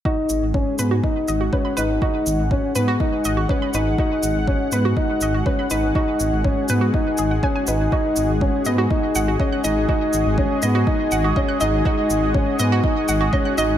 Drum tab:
SH |-x-x-x-x|-x-x-x-x|-x-x-x-x|-x-x-x-x|
BD |o-o-o-o-|o-o-o-o-|o-o-o-o-|o-o-o-o-|

SH |-x-x-x-x|-x-x-x-x|-x-x-x-x|
BD |o-o-o-o-|o-o-o-o-|o-o-o-o-|